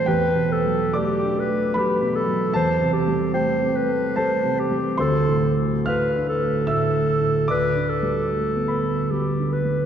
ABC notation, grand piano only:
X:1
M:3/4
L:1/8
Q:1/4=74
K:Ddor
V:1 name="Grand piano"
[Gg]2 [dd']2 [Bb]2 | [Aa]2 [Gg]2 [Aa]2 | [cc']2 [ff']2 [ee']2 | [dd']3 [Bb] z2 |]
V:2 name="Grand piano" clef=bass
(3E,, B,, ^F, (3A, D A, (3F, B,, F, | (3E,, C, G, (3A, C A, (3G, C, G, | (3D,, A,, A, (3A,, D A, (3A,, A, A,, | (3D,, D, G, (3A, B, A, (3G, D, G, |]